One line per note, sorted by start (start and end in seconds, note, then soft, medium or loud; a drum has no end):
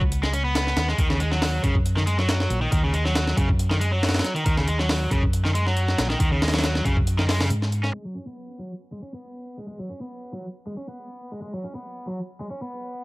0.00 0.72 C#2 medium
0.00 kick loud
0.12 closed hi-hat medium
0.23 0.31 G#3 loud
0.23 snare medium
0.33 0.42 C#4 medium
0.33 closed hi-hat medium
0.45 0.87 B3 loud
0.55 snare loud
0.55 closed hi-hat medium
0.67 snare soft
0.76 0.93 D#2 medium
0.76 snare loud
0.76 closed hi-hat medium
0.88 0.98 G#3 medium
0.88 snare soft
0.98 1.59 D#2 medium
0.98 1.07 D#3 medium
0.98 kick loud
0.98 closed hi-hat medium
1.10 1.20 C#3 medium
1.10 snare medium
1.20 1.29 G#3 medium
1.20 closed hi-hat medium
1.31 1.62 F#3 medium
1.31 snare soft
1.42 snare loud
1.42 open hi-hat medium
1.63 2.46 F#2 medium
1.63 1.74 C#3 medium
1.63 kick medium
1.63 closed hi-hat medium
1.75 kick medium
1.86 closed hi-hat medium
1.96 2.01 D#3 loud
1.96 snare soft
2.07 2.16 G#3 medium
2.07 closed hi-hat medium
2.18 2.61 F#3 loud
2.18 snare soft
2.29 snare loud
2.29 closed hi-hat medium
2.40 snare medium
2.50 2.67 A#1 loud
2.50 closed hi-hat medium
2.62 2.71 D#3 medium
2.72 3.33 D#2 medium
2.72 2.81 D#3 medium
2.72 kick loud
2.72 closed hi-hat medium
2.84 2.93 C#3 medium
2.94 3.03 G#3 medium
2.94 closed hi-hat medium
3.05 3.36 F#3 loud
3.05 snare soft
3.15 snare loud
3.15 closed hi-hat medium
3.27 snare medium
3.37 4.20 F#2 medium
3.37 3.48 C#3 loud
3.37 kick loud
3.37 closed hi-hat medium
3.49 kick medium
3.59 closed hi-hat medium
3.70 3.75 D#3 loud
3.70 snare medium
3.80 3.90 G#3 medium
3.80 closed hi-hat medium
3.92 4.35 F#3 loud
4.03 snare medium
4.03 open hi-hat medium
4.09 snare medium
4.09 open hi-hat medium
4.14 snare medium
4.14 open hi-hat medium
4.19 snare medium
4.19 open hi-hat medium
4.24 snare medium
4.24 closed hi-hat medium
4.36 4.45 D#3 medium
4.36 closed hi-hat soft
4.46 5.07 D#2 loud
4.46 4.55 D#3 medium
4.46 kick loud
4.46 closed hi-hat medium
4.57 4.67 C#3 medium
4.57 snare medium
4.67 4.77 G#3 medium
4.67 closed hi-hat medium
4.79 5.10 F#3 loud
4.79 snare soft
4.89 snare loud
4.89 open hi-hat medium
5.11 5.94 F#2 medium
5.11 5.22 C#3 loud
5.11 kick loud
5.11 closed hi-hat medium
5.23 kick loud
5.33 closed hi-hat medium
5.45 5.49 D#3 loud
5.45 snare soft
5.55 5.64 G#3 medium
5.55 closed hi-hat medium
5.67 6.09 F#3 loud
5.67 snare soft
5.77 closed hi-hat medium
5.88 snare soft
5.98 6.15 A#1 loud
5.98 snare loud
5.98 closed hi-hat medium
6.10 6.19 D#3 medium
6.10 snare soft
6.20 6.81 D#2 loud
6.20 6.29 D#3 medium
6.20 kick loud
6.20 closed hi-hat medium
6.32 6.41 C#3 medium
6.42 6.51 G#3 medium
6.42 snare medium
6.42 open hi-hat medium
6.48 snare medium
6.48 open hi-hat medium
6.53 6.84 F#3 loud
6.53 snare medium
6.53 open hi-hat medium
6.59 snare medium
6.59 open hi-hat medium
6.64 snare loud
6.64 closed hi-hat medium
6.75 snare medium
6.85 7.50 F#2 medium
6.85 6.96 C#3 loud
6.85 kick loud
6.85 closed hi-hat medium
6.97 kick loud
7.07 closed hi-hat medium
7.18 7.23 D#3 loud
7.18 snare medium
7.28 7.39 G#3 medium
7.28 snare loud
7.28 open hi-hat medium
7.40 7.48 C#3 medium
7.40 snare loud
7.40 open hi-hat medium
7.50 7.89 G#2 medium
7.50 closed hi-hat medium
7.62 snare soft
7.72 closed hi-hat medium
7.83 7.88 C#4 medium
7.83 snare soft
7.94 8.03 G#3 medium
8.05 8.15 F#3 medium
8.15 8.24 C#4 medium
8.27 8.58 B3 medium
8.59 8.70 F#3 medium
8.92 8.97 G#3 medium
9.02 9.11 C#4 medium
9.14 9.57 B3 medium
9.58 9.67 G#3 medium
9.68 9.77 G#3 medium
9.80 9.89 F#3 medium
9.90 9.99 C#4 medium
10.01 10.32 B3 medium
10.33 10.44 F#3 medium
10.67 10.71 G#3 medium
10.77 10.86 C#4 medium
10.89 11.31 B3 medium
11.32 11.41 G#3 medium
11.42 11.51 G#3 medium
11.54 11.63 F#3 medium
11.64 11.73 C#4 medium
11.75 12.06 B3 medium
12.07 12.18 F#3 medium
12.41 12.45 G#3 medium
12.51 12.59 C#4 medium
12.62 13.04 B3 medium